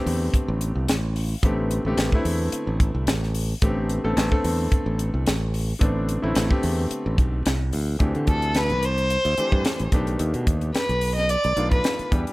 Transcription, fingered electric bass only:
0.06 E2
0.33 muted fingered electric bass stroke
0.48 A1
0.75 C2
0.88 A1
1.43 A1
1.85 A1
1.97 A1
2.25 E2
2.53 muted fingered electric bass stroke
2.67 A1
2.95 C2
3.07 A1
3.62 A1
4.04 A1
4.17 A1
4.44 E2
4.72 muted fingered electric bass stroke
4.86 A1
5.14 C2
5.27 A1
5.81 A1
6.23 A1
6.36 A1
6.64 E2
6.91 muted fingered electric bass stroke
7.06 A1
7.18 B1
7.46 C2
7.73 D2
8.00 D2
8.16 D3
8.27 D2
8.70 C2
9.25 D2
9.38 muted fingered electric bass stroke
9.52 G2
9.65 muted fingered electric bass stroke
9.80 A1
9.92 B1
10.20 D#2
10.34 B2
10.47 D#2
10.75 muted fingered electric bass stroke
10.89 B1
11.45 B1
11.57 B1
11.99 muted fingered electric bass stroke
12.12 E2

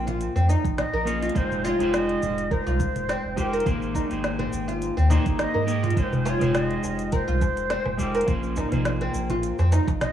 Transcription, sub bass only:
Already playing: A#1
0.36 F2
0.65 A#1
0.93 A#1
1.35 F1
1.80 F1
2.23 F1
2.67 C2
2.95 F1
3.24 F1
3.66 G#1
4.11 G#1
4.53 G#1
4.97 D#2
5.26 G#1
5.55 G#2
5.97 F1
6.41 F1
6.84 F1
7.28 C2
7.57 F1
7.85 F1
8.28 A#1
8.73 A#1
9.14 A#1
9.59 F2
9.88 A#1

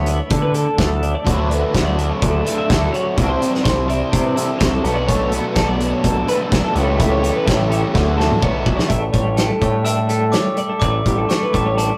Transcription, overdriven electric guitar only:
1.25 D3 F#3 A3 D4
1.50 F#3 A3 D4
1.72 D3 F#3 A3 D4
1.96 F#3 A3 D4
2.45 F#3 A3 D4
2.69 D3 F#3 A3 D4
3.16 C3 G3 C4 E4
3.40 G3 C4 E4
3.64 C3 G3 C4 E4
3.88 G3 C4 E4
4.36 G3 C4 E4
4.59 C3 G3 C4 E4
4.84 B2 F#3 B3 D4
5.08 B2 F#3 B3 D4
5.32 F#3 B3 D4
5.56 B2 F#3 B3 D4
5.79 F#3 B3 D4
6.27 F#3 B3 D4
6.50 B2 F#3 B3 D4
6.73 C#3 E3 A3 E4 G4
6.98 C#3 E3 A3 E4 G4
7.22 A3 E4 G4
7.46 C#3 E3 A3 E4 G4
7.70 A3 E4 G4
7.93 D3 F#3 A3 D4 F#4
8.17 A3 D4 F#4
8.40 F#3 A3 D4 F#4

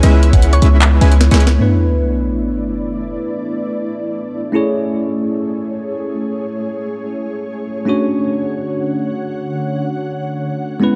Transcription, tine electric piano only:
1.58 A3 B3 D4 E4 B4
4.52 A3 C#4 E4 G#4
4.56 C#5
7.85 A3 C#4 D4 F#4
7.89 C#5
10.80 G#3 B3 C#4 E4 B4

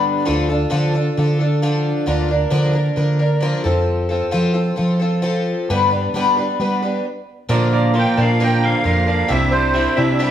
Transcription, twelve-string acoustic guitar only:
Already playing: G2 D3 G3 B3 D4 B4
0.25 D3 F3 D4 F4 A4
0.49 D4 F4 A4
0.70 D3 F3 D4 F4 A4
0.94 D4 F4 A4
1.17 F3 D4 F4 A4
1.39 D4 F4 A4
1.62 D3 F3 D4 F4 A4
2.06 D3 F3 A#3 D4 A#4
2.28 A#3 D4 A#4
2.50 D3 F3 A#3 D4 A#4
2.73 A#3 D4 A#4
2.96 F3 A#3 D4 A#4
3.19 A#3 D4 A#4
3.41 D3 F3 A#3 D4 A#4
3.64 F3 C4 F4 A4
4.09 C4 F4 A4
4.31 F3 C4 F4 A4
4.54 C4 F4 A4
4.76 F3 C4 F4 A4
5.00 C4 F4 A4
5.22 F3 C4 F4 A4
5.70 G2 D3 G3 B3 D4 B4
5.90 G3 B3 D4 B4
6.14 G2 D3 G3 B3 D4 B4
6.37 G3 B3 D4 B4
6.60 G3 B3 D4 B4
6.82 G3 B3 D4 B4
7.49 A#2 D3 F3 A#3 D4 A#4
7.94 F3 A#3 D4 A#4
8.17 F3 A#3 D4 A#4
8.40 A#2 D3 F3 A#3 D4 A#4
8.84 F3 A#3 D4 A#4
9.06 F3 A#3 D4 A#4
9.28 C3 G3 D4 E4 G4
9.73 G3 D4 E4 G4
9.97 D4 E4 G4
10.19 C3 G3 D4 E4 G4

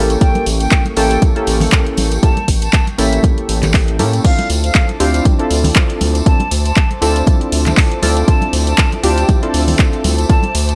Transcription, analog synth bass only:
Already playing: A1
0.46 A1
0.97 A1
1.47 A1
1.98 A1
2.48 A1
2.99 A1
3.49 A1
3.99 A2
4.50 D2
5.00 D2
5.51 D2
6.01 D2
6.51 D2
7.02 D2
7.52 D2
8.03 D2
8.53 D2
9.04 D2
9.54 D2
10.04 D2
10.55 D2

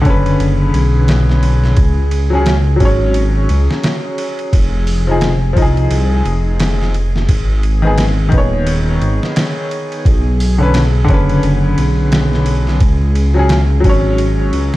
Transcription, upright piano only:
0.02 D3
0.06 C#4 B4
2.30 F#3 C#4
2.35 G#4
2.76 F#3
2.80 C#4
2.85 C#5
5.07 F3 D#4
5.11 G#4
5.53 F3
5.57 D#4
5.62 G#4
7.82 D#3 B3
7.87 G#4
8.29 D#3
8.33 B3
8.38 C#5
10.58 D3 C#4
10.63 B4
11.05 D3
11.10 C#4
11.14 B4
13.34 F#3 C#4
13.39 G#4
13.80 F#3
13.85 C#4
13.89 C#5

